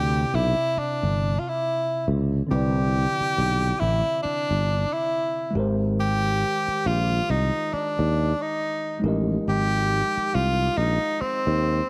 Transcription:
Already playing: D2 C3 C4 E4 G4 B4 D5
0.34 B1 E4
0.77 D4, muted fretless electric bass stroke
1.03 G1
1.39 F4
1.49 E4
2.08 C#2
2.47 D3 C4
2.51 C2 E4 G4 B4
2.55 D5
3.21 muted fretless electric bass stroke
3.38 B1
3.80 A1 E4
4.23 D4, muted fretless electric bass stroke
4.51 G1
4.93 E4
5.51 D#3 G#3
5.55 G#1 G4 A#4
5.59 C5
6.00 G4
6.68 muted fretless electric bass stroke
6.86 A#1 F4
7.30 C2 D#4
7.73 D4, muted fretless electric bass stroke
7.99 D#2
8.42 D#4
9.00 G#3 D#4
9.04 A1 G4 A#4
9.08 D#5
9.48 G#1 G4
10.17 muted fretless electric bass stroke
10.35 C2 F4
10.78 A#1 D#4
11.21 C4, muted fretless electric bass stroke
11.47 D#2

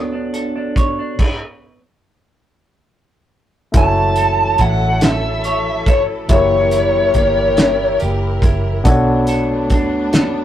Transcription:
Already playing: D2 F#3 B3 D4 F#4 A4 C#5
0.13 D4
0.34 A4, closed hi-hat
0.56 D4
0.76 C#5, kick, closed hi-hat
0.99 D4
1.19 kick, crash
3.72 F#1 E3 F#3 A3 C#4 E4 F#4 A4, kick, closed hi-hat
3.76 A4 C#5 A5
4.16 A4, closed hi-hat
4.58 A1 E4 F#5, kick, closed hi-hat
5.01 A4 E5, snare, closed hi-hat
5.44 C#5, closed hi-hat
5.86 A4 C#5, kick, closed hi-hat
6.28 F#1 F#3 A3 E4 G4 A#4 C#5, kick, closed hi-hat
6.34 A#3 C#5
6.71 E4, closed hi-hat
7.14 G1 A#3, kick, closed hi-hat
7.57 E4, snare, closed hi-hat
8.00 F#1 G4, closed hi-hat
8.42 F#1 E4, kick, closed hi-hat
8.84 B1 A3 B3 D4 F#4, kick, closed hi-hat
8.88 A4 C#5
9.27 A4, closed hi-hat
9.70 D2 D4, kick, closed hi-hat
10.13 A4, snare, closed hi-hat

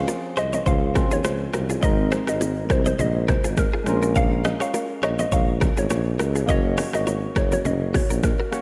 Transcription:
Already playing: F3 C4 C#4 G#4
0.08 F4 A#4, high bongo, shaker
0.37 C2 G#4 C5 D#5, cross-stick, shaker
0.53 A#4 C#5 D#5, low bongo, shaker
0.66 C#2 G#4 C5 F5, kick, low conga, shaker
0.94 F3 C4 C#4 F4 F#4 A#4, kick, cross-stick, low bongo, low conga, shaker
1.11 D#2 F4 G#4 C#5, shaker
1.24 C#2 G#4 C5, cross-stick, high bongo, shaker
1.53 C2 F#4 A#4, cross-stick, high bongo, shaker
1.70 F4 G#4, shaker
1.80 G#1 G#3 C4 D#4 C5 D#5, kick, low conga, shaker
1.85 A#4
2.12 G#4 C5, cross-stick, low bongo, shaker
2.27 G#1 F#4 A#4 D#5, cross-stick, shaker
2.41 D#4 G#4, high bongo, shaker
2.70 C2 F#4 A#4 C5, kick, cross-stick, shaker
2.86 C5 D#5, low bongo, shaker
2.99 A#1 G#4 C5 D#5, low conga, shaker
3.28 F#4 A#4 C5, kick, cross-stick, low bongo, low conga, shaker
3.44 G#1 F4 G#4, shaker
3.57 A#4, kick, cross-stick, high bongo, shaker
3.74 F4 G#4
3.84 A#1 G#3 C#4 F4, cross-stick, high bongo, shaker
3.89 A#4
4.03 F#4 A#4, shaker
4.16 C#5 F5, kick, low conga, shaker
4.45 C5 D#5, cross-stick, low bongo, shaker
4.60 A#4 C#5 F5, cross-stick, shaker
4.74 F4 A#4, high bongo, shaker
5.03 A#1 A#4 C#5 D#5, cross-stick, shaker
5.19 C5 D#5, low bongo, shaker
5.32 A#1 A#4 C#5 F5, kick, low conga, shaker
5.61 F#4 A#4, kick, cross-stick, low bongo, low conga, shaker
5.77 G#1 F4 G#4 C#5, shaker
5.90 A#1 A#4 C#5, cross-stick, high bongo, shaker
6.19 C#2 F#4 A#4, cross-stick, high bongo, shaker
6.36 F4 G#4, shaker
6.46 F#1 A#3 C#4 F#4 A#4 D#5, kick, low conga, shaker
6.51 C#5
6.77 A#4 C#5, cross-stick, open hi-hat, low bongo, shaker
6.93 G#1 F#4 A#4 D#5, cross-stick, shaker
7.07 A#4 C#5, high bongo, shaker
7.36 F#1 F#4 A#4 C#5, kick, cross-stick, shaker
7.52 F#4 A#4 C#5, low bongo, shaker
7.65 F#1 C#4 G#4 D#5, low conga, shaker
7.94 D#4 F#4 C#5, kick, cross-stick, open hi-hat, low bongo, low conga, shaker
8.10 A#1 F#4 A#4, shaker
8.23 A#4, kick, cross-stick, high bongo, shaker
8.40 F#4 A#4
8.51 A#3 C#4 F#4 C#5, cross-stick, shaker

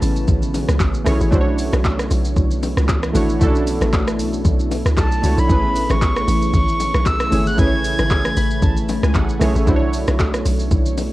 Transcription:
Already playing: C#3 E3 G#3 A3 B3 C#4 E4 F#4 G#4 B4 C#5 A5
0.02 A1, open hi-hat, shaker
0.16 shaker
0.28 A1, kick, low conga, shaker
0.42 shaker
0.54 open hi-hat, low bongo, shaker
0.68 C#2, cross-stick, shaker
0.80 A1, kick, clap, high bongo, shaker
0.94 shaker
1.04 B1 A3 C#4 E4 G#4 C#5, cross-stick, open hi-hat, low conga, shaker
1.21 A1, shaker
1.31 B1 E3 A3 B3 D4 E4 F#4 C5 C#5, kick, low conga, shaker
1.41 C#5
1.58 open hi-hat, shaker
1.73 B1, cross-stick, low bongo, shaker
1.85 kick, clap, high bongo, shaker
1.99 cross-stick, shaker
2.11 B1, open hi-hat, shaker
2.25 shaker
2.36 B1, kick, low conga, shaker
2.51 shaker
2.63 open hi-hat, low bongo, shaker
2.77 C#2, cross-stick, shaker
2.89 kick, clap, high bongo, shaker
3.03 cross-stick, shaker
3.13 A1 A3 D4 E4 F#4 C#5, open hi-hat, low conga, shaker
3.29 shaker
3.39 B1 A3 C#4 D4 E4 F#4 A4, kick, low conga, shaker
3.46 D4
3.55 shaker
3.67 open hi-hat, shaker
3.81 A1, cross-stick, low bongo, shaker
3.93 kick, clap, high bongo, shaker
4.08 cross-stick, shaker
4.19 B1, open hi-hat, shaker
4.34 shaker
4.45 B1, kick, low conga, shaker
4.60 shaker
4.72 open hi-hat, low bongo, shaker
4.86 D2, cross-stick, shaker
4.97 B1 A5, kick, clap, high bongo, shaker
5.12 shaker
5.22 C#2 A3 D4 E4 F#4 C#5, open hi-hat, low conga, shaker
5.38 B1 B5, shaker
5.48 A1 C#3 E3 A3 C#4 E4 G#4 B4, kick, low conga, shaker
5.76 open hi-hat, shaker
5.90 A1 C#6, cross-stick, low bongo, shaker
6.02 kick, clap, high bongo, shaker
6.17 cross-stick, shaker
6.28 A1, open hi-hat, shaker
6.42 shaker
6.54 A1 C#6, kick, low conga, shaker
6.68 shaker
6.80 open hi-hat, low bongo, shaker
6.95 B1, cross-stick, shaker
7.06 E6, kick, clap, high bongo, shaker
7.20 cross-stick, shaker
7.31 G#1 A3 C#4 E4 G#4 C#5, open hi-hat, low conga, shaker
7.47 F#6, shaker
7.57 A1 A3 C#4 E4 G#4 B4 C#5 G#6, kick, low conga, shaker
7.67 C#5
7.84 open hi-hat, shaker
7.99 G#1, cross-stick, low bongo, shaker
8.10 kick, clap, high bongo, shaker
8.25 cross-stick, shaker
8.37 A1 B5, open hi-hat, shaker
8.51 shaker
8.62 A1 A5, kick, low conga, shaker
8.77 shaker
8.89 open hi-hat, low bongo, shaker
9.03 C#2 G#5, cross-stick, shaker
9.15 A1 F#5, kick, clap, high bongo, shaker
9.29 shaker
9.39 B1 A3 C#4 E4 G#4 C#5 E5, cross-stick, open hi-hat, low conga, shaker
9.55 A1, shaker
9.66 B1 A3 B3 D4 E4 F#4 C5, kick, low conga, shaker
9.76 C#5
9.93 open hi-hat, shaker
10.08 B1, cross-stick, low bongo, shaker
10.19 kick, clap, high bongo, shaker
10.34 cross-stick, shaker
10.45 B1, open hi-hat, shaker
10.60 shaker
10.71 B1, kick, low conga, shaker
10.86 shaker
10.98 open hi-hat, low bongo, shaker

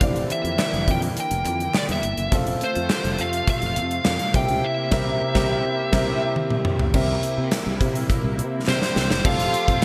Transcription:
Already playing: D3 E3
0.00 F1 A#3 C4 E4 G4 D5, kick, closed hi-hat
0.16 closed hi-hat
0.30 E5, closed hi-hat
0.44 F2, closed hi-hat
0.59 snare, clap
0.73 F1, closed hi-hat
0.88 F2 G5, kick, closed hi-hat
1.02 closed hi-hat
1.17 G5, closed hi-hat
1.31 F1, closed hi-hat
1.45 F2, clap, closed hi-hat
1.60 closed hi-hat
1.74 D5, snare, clap
1.89 E2 E5, closed hi-hat
2.03 G1, closed hi-hat
2.17 F#1, closed hi-hat
2.31 F1 C3 A3 C4 F4 A4 F5, kick, closed hi-hat
2.47 closed hi-hat
2.61 C5, closed hi-hat
2.75 F2, closed hi-hat
2.90 snare, clap
3.04 F1, closed hi-hat
3.18 F2 F5, closed hi-hat
3.33 closed hi-hat
3.48 F5, kick, closed hi-hat
3.62 F1, closed hi-hat
3.76 F2, clap, closed hi-hat
3.91 closed hi-hat
4.05 F2, snare, clap
4.19 closed hi-hat
4.33 C2 C3 A#3 C4 E4 G4 A#4 E5 G5, kick, closed hi-hat
4.49 C#2, closed hi-hat
4.64 E5
4.91 C2 C3 C4 G4 A#4 E5, kick, snare, crash
5.34 C2 C3 C4 G4 A#4 E5, kick, snare
5.92 C2 C3 C4 G4 A#4 E5, kick, snare, crash
6.36 high tom
6.50 mid tom
6.65 mid tom
6.79 floor tom
6.93 C2 C3 A#3 C4 E4 G4 A#4 E5, kick, crash
7.23 closed hi-hat
7.37 C3
7.52 snare, clap, closed hi-hat
7.66 C2
7.80 C3, kick, closed hi-hat
7.95 closed hi-hat
8.10 kick, closed hi-hat
8.24 C2
8.38 C3, closed hi-hat
8.67 C3 C4 C5, snare, clap
8.82 snare
8.96 C2, snare
9.11 F#1, snare
9.24 F1 F3 A3 C4 F4 G4 A4 F5, kick, crash
9.40 closed hi-hat
9.54 closed hi-hat
9.68 F2, kick, closed hi-hat

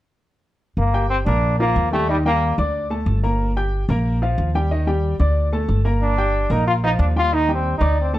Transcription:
0.77 G1 A#3
0.94 G4 G5 G6
1.10 C4
1.25 A#1 A#3 D4 A#4 A#5
1.60 F3 A#3 F4 F5
1.76 D#2
1.92 G3 A3 G4 G5
2.09 D#3 G3 D#4 D#5
2.25 G3 A#3 G4 G5
2.58 D2 D4 D5 D6
2.90 A3 A4 A5
3.06 G1
3.23 A#3 A#4 A#5
3.56 G4 G5 G6
3.89 A#1 A#3 A#4 A#5
4.22 F3 F4 F5
4.38 D#2
4.55 G3 G4 G5
4.71 D#3 D#4 D#5
4.87 G3 G4 G5
5.20 D2 D4 D5 D6
5.53 A3 A4 A5
5.69 G1
5.85 A#3 A#4 A#5
6.02 D4
6.18 G4 G5 G6
6.50 A#1 A#3 D#4 A#4 A#5
6.67 F4
6.84 F3 D#4 F4 F5
6.99 D#2 D4
7.16 G3 F4 G4 G5
7.32 D#3 D#4 D#5
7.48 G3 G4 G5
7.55 C4
7.78 D2 D4 D#4 D5 D6
8.01 C4
8.13 A3 A4 A5

